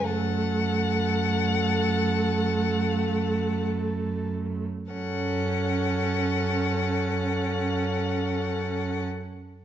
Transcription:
0.04 cello F#2, viola A3, violin A4 F#5
4.92 cello F#2, viola C#4, violin A4 F#5

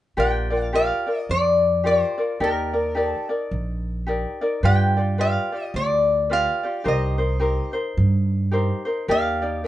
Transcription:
0.17 upright bass A#1, ukulele F4 G4 A#4 D5, resonator guitar played with a steel bar G5
0.50 ukulele F4 A#4 D5
0.64 resonator guitar played with a steel bar F5
0.73 ukulele F4 G4 A#4 D5, resonator guitar played with a steel bar F5
1.06 ukulele F4 A#4 D5
1.19 resonator guitar played with a steel bar D#5
1.29 upright bass F2, resonator guitar played with a steel bar D5
1.84 ukulele F4 G4 A#4 D5, resonator guitar played with a steel bar C5
2.18 ukulele F4 A#4 D5
2.40 upright bass D#2, ukulele D#4 G4 A#4 D5, resonator guitar played with a steel bar A#4
2.73 ukulele D#4 A#4 D5
2.95 ukulele D#4 G4 A#4 D5
3.01 resonator guitar played with a steel bar A4
3.29 ukulele D#4 A#4 D5
3.51 upright bass A#1
4.07 ukulele D#4 G4 A#4 D5
4.41 ukulele D#4 A#4 D5
4.63 upright bass G2, ukulele F4 G4 B4 D5, resonator guitar played with a steel bar G5
4.97 ukulele F4 G4 D5
5.18 ukulele F4 G4 B4 D5, resonator guitar played with a steel bar F5
5.52 ukulele F4 G4 D5
5.65 resonator guitar played with a steel bar D#5
5.74 upright bass D2, resonator guitar played with a steel bar D5
6.30 ukulele F4 G4 B4 D5, resonator guitar played with a steel bar F5
6.63 ukulele F4 G4 D5
6.84 upright bass C2, ukulele D#4 G4 A#4 C5
6.88 resonator guitar played with a steel bar D#5
7.18 ukulele D#4 A#4 C5
7.40 ukulele D#4 G4 A#4 C5
7.73 ukulele D#4 A#4 C5
7.97 upright bass G2
8.51 ukulele D#4 G4 A#4 C5
8.85 ukulele D#4 A#4 C5
9.08 upright bass D#2, ukulele D#4 G4 A#4 D5, resonator guitar played with a steel bar F5
9.42 ukulele D#4 G4 D5
9.64 ukulele A#4

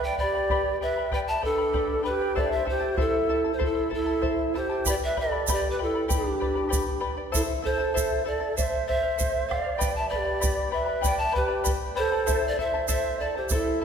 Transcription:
Already playing: charango G4 B4 D5 G5 B5
0.03 quena D5, pan flute G5
0.18 quena G4, charango B4 D5 G5 B5, pan flute D5, bombo low
0.35 charango B4 D5 B5
0.50 charango G4 B4 D5 G5 B5, bombo low
0.81 charango B4 D5 G5 B5, quena B4, pan flute E5
0.98 charango B4 D5 B5
1.12 charango G4 B4 D5 G5 B5, quena D5, pan flute G5, bombo low
1.28 quena E5, pan flute A5
1.41 pan flute A4, charango B4 D5 G5 B5, bombo low
1.46 quena D4
1.58 charango B4 D5 B5
1.73 charango G4 B4 D5 G5 B5, bombo low
2.03 charango B4 D5 G5 B5, pan flute B4
2.09 quena G4
2.21 charango B4 D5 B5
2.35 charango E4 A4 C5 E5 A5, quena A4, pan flute D5, bombo low
2.52 quena C5, pan flute E5
2.65 charango E4 A4 E5 A5, pan flute C5, bombo low
2.71 quena G4
2.80 charango E4 A4 A5
2.97 charango E4 A4 C5 E5 A5, quena E4, pan flute A4, bombo low
3.29 charango E4 A4 E5 A5
3.44 charango E4 A4 A5
3.53 quena A4, pan flute C5
3.59 charango E4 A4 C5 E5 A5, bombo low
3.64 quena E4 F4, pan flute A4
3.90 charango E4 A4 E5 A5, pan flute A4, bombo low
3.94 quena E4
4.06 charango E4 A4 A5
4.22 charango E4 A4 C5 E5 A5, bombo low
4.54 charango E4 A4 E5 A5, quena G4, pan flute C5
4.70 charango E4 A4 A5
4.86 charango G4 B4 D5 G5 B5, quena G4, pan flute D5, bombo low, shaker
5.04 quena B4, pan flute E5
5.17 quena A4, charango B4 D5 G5 B5, pan flute D5, bombo low
5.32 charango B4 D5 B5
5.47 charango G4 B4 D5 G5 B5, quena G4, bombo low, shaker
5.53 pan flute D5
5.67 quena G4, pan flute B4
5.79 quena F4, charango B4 D5 G5 B5
5.83 quena E4, pan flute A4
5.95 charango B4 D5 B5
6.08 charango G4 B4 D5 G5 B5, bombo low, shaker
6.13 quena D4, pan flute G4
6.40 charango B4 D5 G5 B5, bombo low
6.55 charango B4 D5 B5
6.69 charango G4 B4 D5 G5 B5, bombo low, shaker
7.00 charango B4 D5 G5 B5
7.17 charango B4 D5 B5
7.32 charango E4 A4 C5 E5 A5, quena E4, pan flute A4, bombo low, shaker
7.62 charango E4 A4 E5 A5, quena A4, pan flute C5, bombo low
7.78 charango E4 A4 A5
7.94 charango E4 A4 C5 E5 A5, bombo low, shaker
8.25 charango E4 A4 E5 A5, quena A4, pan flute D5
8.40 charango E4 A4 A5
8.56 charango A4 C5, quena D5, pan flute E5, bombo low, shaker
8.62 quena C5
8.87 charango A4 C5 F5, quena C5, pan flute E5, bombo low
9.02 charango C5 F5
9.17 charango A4 C5, bombo low, shaker
9.48 charango A4 C5 F5, quena D5, pan flute F5, bombo rim, bombo low
9.64 charango C5 F5
9.78 charango G4 B4 D5 G5 B5, pan flute G5, bombo low, shaker
9.83 quena D5
9.96 quena E5, pan flute A5
10.09 charango B4 D5 G5 B5, pan flute D5, bombo low
10.14 quena G4 A4
10.24 charango B4 D5 B5
10.40 charango G4 B4 D5 G5 B5, bombo low, shaker
10.71 charango B4 D5 G5 B5, pan flute E5
10.76 quena B4 C5
10.86 charango B4 D5 B5
11.01 charango G4 B4 D5 G5 B5, pan flute G5, bombo low, shaker
11.06 quena D5
11.18 pan flute A5
11.23 quena E5
11.32 charango B4 D5 G5 B5, pan flute B4, bombo low
11.36 quena G4
11.48 charango B4 D5 B5
11.64 charango G4 B4 D5 G5 B5, bombo low, shaker
11.95 charango B4 D5 G5 B5, pan flute C5
11.99 quena A4
12.12 charango B4 D5 B5
12.26 charango E4 A4 C5 E5 A5, bombo low, shaker
12.45 quena A4, pan flute D5
12.57 charango E4 A4 E5 A5, pan flute E5, bombo low
12.62 quena C5
12.74 charango E4 A4 A5
12.88 charango E4 A4 C5 E5 A5, quena C5, pan flute E5, bombo low, shaker
13.20 charango E4 A4 E5 A5, pan flute D5
13.24 quena A4
13.35 charango E4 A4 A5, quena G4, pan flute C5
13.49 charango E4 A4 C5 E5 A5, pan flute A4, bombo low, shaker
13.56 quena E4
13.81 charango E4 E5 A5

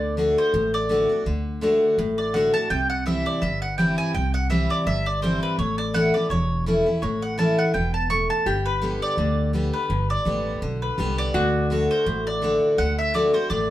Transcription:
Already playing: upright bass D2, steel-string acoustic guitar D3, mandolin D5
0.17 steel-string acoustic guitar D3 A3 D4 F#4
0.38 mandolin C5
0.54 upright bass A1, steel-string acoustic guitar A2
0.74 mandolin D5
0.89 steel-string acoustic guitar D3 A3 D4 F#4
1.09 steel-string acoustic guitar D4 F#4
1.26 upright bass D2, steel-string acoustic guitar D3
1.61 steel-string acoustic guitar D3 A3 D4 F#4
1.98 upright bass A1, steel-string acoustic guitar A2
2.18 mandolin D5
2.34 steel-string acoustic guitar D3 A3 D4 F#4, mandolin F#5
2.54 steel-string acoustic guitar D4 F#4, mandolin A5
2.70 upright bass C2, steel-string acoustic guitar C3, mandolin G5
2.90 mandolin F#5
3.06 steel-string acoustic guitar E3 G3 C4 E4, mandolin E5
3.26 mandolin D5
3.42 upright bass G1, steel-string acoustic guitar G2, mandolin E5
3.62 mandolin F#5
3.78 steel-string acoustic guitar E3 G3 C4 E4, mandolin G5
3.98 mandolin G#5
4.14 upright bass C2, steel-string acoustic guitar C3, mandolin G5
4.34 mandolin F#5
4.50 steel-string acoustic guitar E3 G3 C4 E4, mandolin E5
4.70 mandolin D5
4.86 upright bass G1, steel-string acoustic guitar G2, mandolin E5
5.06 mandolin D5
5.22 steel-string acoustic guitar E3 G3 C4 E4, mandolin C5
5.43 mandolin B4
5.58 upright bass A1, steel-string acoustic guitar A2, mandolin C#5
5.78 mandolin D5
5.94 steel-string acoustic guitar E3 A3 C#4 E4, mandolin F#5
6.14 steel-string acoustic guitar C#4 E4, mandolin D5
6.30 upright bass E1, steel-string acoustic guitar E2, mandolin C#5
6.66 steel-string acoustic guitar E3 A3 C#4 E4
6.86 steel-string acoustic guitar C#4 E4
7.02 upright bass A1, steel-string acoustic guitar A2, mandolin C#5
7.22 mandolin F#5
7.38 steel-string acoustic guitar E3 A3 C#4 E4, mandolin A5
7.58 mandolin F#5
7.74 upright bass E1, steel-string acoustic guitar B2, mandolin G5
7.94 mandolin A5
8.10 steel-string acoustic guitar A2, mandolin C#6
8.30 mandolin A5
8.46 upright bass G1, steel-string acoustic guitar G2, resonator guitar played with a steel bar G4
8.66 mandolin B4
8.81 steel-string acoustic guitar D3 G3 B3 G4
9.02 mandolin D5
9.17 upright bass D2, steel-string acoustic guitar D3
9.53 steel-string acoustic guitar D3 G3 B3 G4
9.74 mandolin B4
9.90 upright bass G1, steel-string acoustic guitar G2
10.10 mandolin D5
10.25 upright bass A1, steel-string acoustic guitar D3 G3 B3 G4
10.62 upright bass B1, steel-string acoustic guitar D3
10.82 mandolin B4
10.98 upright bass C2, steel-string acoustic guitar D3 G3 B3 G4
11.18 mandolin D5
11.34 upright bass D2, steel-string acoustic guitar D3, resonator guitar played with a steel bar F#4
11.70 steel-string acoustic guitar D3 A3 D4 F#4
11.91 mandolin C5
12.06 upright bass A1, steel-string acoustic guitar A2
12.27 mandolin D5
12.42 steel-string acoustic guitar D3 A3 D4 F#4
12.78 upright bass D2, steel-string acoustic guitar D3, mandolin F#5
12.99 mandolin E5
13.14 steel-string acoustic guitar D3 A3 D4 F#4, mandolin D5
13.33 steel-string acoustic guitar D4 F#4, mandolin C5
13.50 upright bass A1, steel-string acoustic guitar A2, mandolin D5

